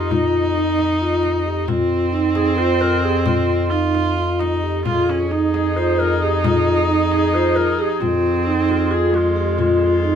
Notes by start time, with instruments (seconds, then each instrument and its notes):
Already playing: bass clarinet F2, viola D#4, clarinet F4
0.10 clarinet D#4, vibraphone F4, frame drum
0.56 vibraphone D#4
0.79 frame drum
1.01 vibraphone F4
1.23 frame drum
1.46 vibraphone G4
1.68 bass clarinet F2, viola C4, vibraphone F4, frame drum
2.12 vibraphone D#4
2.35 clarinet G#4, frame drum
2.58 vibraphone F4, clarinet C5
2.81 clarinet A#4, frame drum
3.03 vibraphone G4, clarinet G#4
3.26 vibraphone F4, clarinet F4, frame drum
3.70 vibraphone D#4, viola F4, frame drum
3.95 frame drum
4.17 vibraphone F4, frame drum
4.39 viola D#4, frame drum
4.63 vibraphone G4
4.85 bass clarinet F2, woodwind section F3 D#4 G#4, vibraphone F4, viola F4, frame drum
5.09 viola C#4
5.31 vibraphone D#4, viola D#4
5.54 clarinet G#4, frame drum
5.76 vibraphone F4, clarinet C5
5.99 clarinet A#4, frame drum
6.22 vibraphone G4, clarinet G#4
6.44 vibraphone F4, frame drum
6.89 vibraphone D#4
7.12 clarinet G#4, frame drum
7.34 vibraphone F4, clarinet C5
7.56 clarinet A#4, frame drum
7.79 vibraphone G4, clarinet G#4
8.01 bass clarinet F2, viola C4, vibraphone F4, frame drum
8.46 vibraphone D#4
8.68 clarinet F4, frame drum
8.91 vibraphone F4, clarinet G#4
9.14 viola G#3, clarinet F4, frame drum
9.36 vibraphone G4
9.58 vibraphone F4, clarinet F4, frame drum
9.81 frame drum
10.03 vibraphone D#4